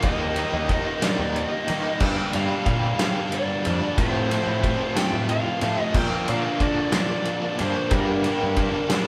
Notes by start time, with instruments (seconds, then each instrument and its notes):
0.02 picked electric bass D#2, overdriven electric guitar D#3 G3 A#3 D#4, lead electric guitar D#5, kick, ride
0.36 overdriven electric guitar D#3 G3 A#3 D#4, ride
0.53 picked electric bass D#2
0.69 overdriven electric guitar D#3 G3 A#3 D#4, lead electric guitar D#5, kick, ride
1.02 overdriven electric guitar D#3 G3 A#3 D#4, lead electric guitar D5, snare, ride
1.19 picked electric bass D#2
1.36 lead electric guitar D5, ride
1.48 lead electric guitar D#5
1.68 overdriven electric guitar D#3 G3 A#3 D#4, picked electric bass D#3, ride
2.00 overdriven electric guitar G2 D3 G3 A#3 D4, picked electric bass G2, lead electric guitar G5, kick, crash
2.33 overdriven electric guitar G2 D3 G3 A#3 D4, picked electric bass G2, lead electric guitar F5, ride
2.66 overdriven electric guitar G2 D3 G3 A#3 D4, picked electric bass A#2, lead electric guitar F5, kick, ride
2.99 overdriven electric guitar G2 D3 G3 A#3 D4, lead electric guitar F5, snare, ride
3.32 lead electric guitar D5, ride
3.65 picked electric bass F2, overdriven electric guitar G2 D3 G3 A#3 D4, ride
3.98 overdriven electric guitar F2 A2 C3 F3 A3 C4 F4, picked electric bass A2, lead electric guitar C5, kick, ride
4.30 overdriven electric guitar F2 A2 C3 F3 A3 C4, ride
4.34 overdriven electric guitar F4
4.47 picked electric bass A2
4.64 overdriven electric guitar F2 A2 C3 F3 A3 C4 F4, kick, ride
4.96 overdriven electric guitar F2 A2 C3 F3 A3 C4 F4, lead electric guitar G5, snare, ride
5.13 picked electric bass A2
5.29 lead electric guitar F5, ride
5.61 overdriven electric guitar F2 A2 C3 F3 A3 C4 F4, picked electric bass A2, ride
5.82 lead electric guitar D#5
5.94 overdriven electric guitar A#2 D3 F3 A#3 D4, picked electric bass A#2, lead electric guitar G5, kick, crash
6.28 overdriven electric guitar A#2 D3 F3 A#3 D4, picked electric bass A#2, lead electric guitar F5, ride
6.60 overdriven electric guitar A#2 D3 F3 A#3 D4, picked electric bass D3, lead electric guitar D5, kick, ride
6.92 overdriven electric guitar A#2 D3 F3 A#3 D4, lead electric guitar D5, snare, ride
7.25 ride
7.59 picked electric bass G2, overdriven electric guitar A#2 D3 F3 A#3 D4, lead electric guitar C5, ride
7.91 overdriven electric guitar G2 D3 G3 A#3 D4, picked electric bass G2, lead electric guitar A#4, kick, ride
8.24 overdriven electric guitar G2 D3 G3 A#3 D4, ride
8.43 picked electric bass G2
8.56 overdriven electric guitar G2 D3 G3 A#3 D4, kick, ride
8.89 overdriven electric guitar G2 D3 G3 A#3 D4, snare, ride